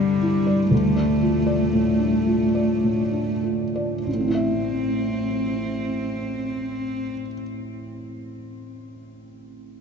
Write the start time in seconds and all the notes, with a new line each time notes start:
Already playing: C2 G2 G3 E4 D5
0.00 D4
0.23 E4
0.47 D5
0.71 D2 A3
0.96 D4
1.22 F4
1.47 D5
1.73 A2
1.99 D4
2.27 F4
2.55 D5
2.84 A2
3.13 D4
3.44 F4
3.76 D5
4.06 A1 C4
4.14 A2
4.20 C4
4.28 E4
4.35 E5